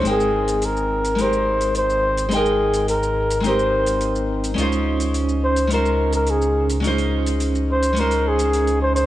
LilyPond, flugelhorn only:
\new Staff \with { instrumentName = "Flugelhorn" } { \time 4/4 \key aes \major \tempo 4 = 106 aes'4 bes'4 c''4 c''4 | aes'4 bes'4 c''4. r8 | r4. c''8 bes'8. bes'16 aes'8. r16 | r4. c''8 bes'8 aes'4 c''16 c''16 | }